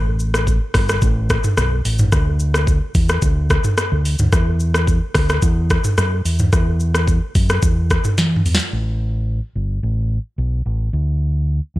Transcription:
0.00 0.58 A1 loud
0.19 shaker medium
0.34 cross-stick loud
0.34 shaker medium
0.47 kick medium
0.47 shaker medium
0.74 0.97 G1 loud
0.74 kick loud
0.74 cross-stick loud
0.74 open hi-hat medium
0.74 shaker medium
0.89 cross-stick loud
0.89 shaker medium
1.02 1.36 A1 loud
1.02 kick loud
1.02 shaker medium
1.30 kick medium
1.30 cross-stick loud
1.30 shaker medium
1.44 mid tom loud
1.44 shaker medium
1.57 1.80 B1 loud
1.57 cross-stick loud
1.57 shaker medium
1.85 2.07 A1 medium
1.85 open hi-hat medium
1.85 shaker medium
1.99 mid tom loud
1.99 shaker medium
2.12 2.78 D2 loud
2.12 kick loud
2.12 cross-stick medium
2.12 shaker medium
2.40 shaker medium
2.54 cross-stick loud
2.54 shaker medium
2.67 kick medium
2.67 shaker medium
2.95 3.18 E2 loud
2.95 kick loud
2.95 open hi-hat medium
2.95 shaker medium
3.09 cross-stick loud
3.09 shaker medium
3.22 3.57 D2 loud
3.22 kick loud
3.22 shaker medium
3.50 kick medium
3.50 cross-stick loud
3.50 shaker medium
3.64 mid tom loud
3.64 shaker medium
3.78 cross-stick loud
3.78 shaker medium
3.92 4.14 D2 medium
4.05 open hi-hat medium
4.05 shaker medium
4.19 4.30 D2 medium
4.19 mid tom loud
4.19 shaker medium
4.33 4.98 E2 loud
4.33 kick loud
4.33 cross-stick loud
4.33 shaker medium
4.60 shaker medium
4.74 cross-stick loud
4.74 shaker medium
4.87 kick medium
4.87 shaker medium
5.15 5.38 D2 loud
5.15 kick loud
5.15 cross-stick loud
5.15 open hi-hat medium
5.15 shaker medium
5.29 cross-stick loud
5.29 shaker medium
5.42 5.77 E2 loud
5.42 kick loud
5.42 shaker medium
5.70 kick loud
5.70 cross-stick loud
5.70 shaker medium
5.84 mid tom loud
5.84 shaker medium
5.98 6.20 F#2 loud
5.98 cross-stick loud
5.98 shaker medium
6.25 6.48 E2 medium
6.25 open hi-hat medium
6.25 shaker medium
6.39 mid tom medium
6.39 shaker medium
6.53 7.19 E2 loud
6.53 kick loud
6.53 cross-stick medium
6.53 shaker medium
6.80 shaker medium
6.95 cross-stick loud
6.95 shaker medium
7.08 kick medium
7.08 shaker medium
7.35 7.58 F#2 loud
7.35 kick loud
7.35 open hi-hat medium
7.35 shaker medium
7.49 cross-stick loud
7.49 shaker medium
7.62 7.97 E2 loud
7.62 kick loud
7.62 shaker medium
7.90 kick medium
7.90 cross-stick loud
7.90 shaker medium
8.04 mid tom loud
8.04 shaker medium
8.18 8.40 E3 loud
8.18 snare medium
8.18 shaker medium
8.36 mid tom medium
8.45 8.57 E2 medium
8.45 open hi-hat medium
8.45 shaker medium
8.55 snare loud
8.59 shaker medium
8.73 9.39 A1 loud
9.55 9.78 G1 medium
9.83 10.17 A1 loud
10.38 10.61 B1 medium
10.66 10.88 A1 medium
10.93 11.59 D2 loud
11.76 11.79 E2 medium

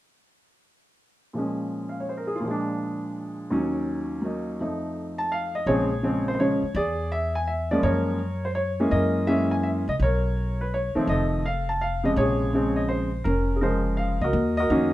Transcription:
1.33 2.39 A#2 soft
1.33 2.42 F3 soft
1.33 2.44 G#3 soft
1.39 2.45 C#4 soft
1.89 2.00 F5 soft
2.00 2.11 C#5 soft
2.09 2.24 C5 soft
2.17 2.31 A#4 soft
2.27 2.37 G#4 soft
2.36 2.47 F4 soft
2.40 3.50 A#2 medium
2.40 3.51 F3 soft
2.47 3.53 G#3 soft
2.47 3.55 D4 medium
3.50 4.59 D#2 medium
3.50 4.59 D#3 medium
3.50 4.20 F#3 soft
3.50 4.60 C#4 medium
4.22 4.58 F#3 soft
4.22 4.59 A#3 soft
4.22 4.60 D#4 soft
4.60 5.68 F2 soft
4.60 5.67 F3 soft
4.60 5.68 A3 soft
4.60 5.69 D#4 medium
5.18 5.31 A5 medium
5.32 5.53 F5 medium
5.55 5.68 D#5 medium
5.66 6.59 A#1 medium
5.66 5.89 C#3 medium
5.66 5.89 F3 medium
5.66 5.89 G#3 soft
5.66 5.89 C4 medium
5.66 6.23 G#4 medium
5.66 6.23 C#5 medium
6.03 6.38 C#3 medium
6.03 6.38 F3 soft
6.03 6.39 G#3 medium
6.03 6.39 C4 medium
6.28 6.33 C5 medium
6.35 6.40 C5 medium
6.40 6.61 C#3 soft
6.40 6.61 F3 soft
6.40 6.61 G#3 soft
6.40 6.61 C#4 soft
6.40 6.77 C#5 medium
6.63 muted upright bass stroke soft
6.75 7.79 E2 medium
6.75 7.32 G#4 medium
6.75 7.13 D5 medium
7.12 7.34 E5 medium
7.35 7.48 G#5 medium
7.47 7.72 E5 medium
7.71 8.17 F3 medium
7.71 8.18 G#3 medium
7.71 8.18 A#3 medium
7.71 8.18 C#4 medium
7.71 7.84 D5 medium
7.83 8.88 F#2 medium
7.83 8.40 A#4 medium
7.83 8.45 C#5 medium
8.45 8.50 C5 medium
8.55 8.93 C#5 medium
8.80 9.26 E3 medium
8.80 9.26 G#3 medium
8.80 9.26 A#3 medium
8.80 9.26 C#4 medium
8.91 9.84 F#2 medium
8.91 9.48 A#4 medium
8.91 9.25 D#5 medium
9.27 9.83 E3 medium
9.27 9.83 G#3 medium
9.27 9.83 A#3 medium
9.27 9.83 C#4 medium
9.27 9.52 E5 medium
9.51 9.63 G#5 medium
9.63 9.69 E5 medium
9.88 9.99 C2 medium
9.88 9.94 D#5 medium
10.00 10.92 B1 medium
10.00 10.63 C#5 medium
10.04 10.58 A#4 medium
10.61 10.74 B4 medium
10.74 11.10 C#5 medium
10.95 11.42 D#3 medium
10.95 11.42 F3 medium
10.95 11.42 A3 medium
10.95 11.43 C4 medium
10.95 muted upright bass stroke soft
11.07 12.12 F1 medium
11.07 11.46 D#5 medium
11.11 11.66 A4 medium
11.46 11.69 F5 medium
11.69 11.82 A5 medium
11.81 12.05 F5 medium
12.04 12.51 C3 medium
12.04 12.50 C#3 medium
12.04 12.51 F3 medium
12.04 12.51 G#3 medium
12.04 12.10 D#5 medium
12.16 13.21 A#1 medium
12.16 12.74 G#4 medium
12.16 12.79 C#5 medium
12.53 13.08 C#3 medium
12.53 13.09 F3 soft
12.53 13.09 G#3 medium
12.53 13.09 C4 medium
12.76 12.88 D#5 medium
12.89 13.26 C5 medium
13.24 14.17 F1 medium
13.24 13.62 C#4 medium
13.24 13.57 A#4 medium
13.56 13.61 G#4 soft
13.61 14.16 C#3 medium
13.61 14.17 F3 medium
13.61 14.17 G#3 medium
13.61 14.18 C#4 soft
13.61 14.17 A#4 medium
13.61 14.17 C5 medium
13.97 14.22 F5 medium
14.21 14.32 C#2 medium
14.21 14.59 F#4 medium
14.21 14.58 A#4 medium
14.21 14.55 D#5 medium
14.33 14.68 D#2 medium
14.57 14.69 F#4 medium
14.57 14.93 A#4 medium
14.57 14.93 D#5 medium
14.70 14.93 F2 medium
14.70 14.93 D#3 medium
14.70 14.93 A#3 medium
14.70 14.93 C#4 medium
14.70 14.93 F#4 medium

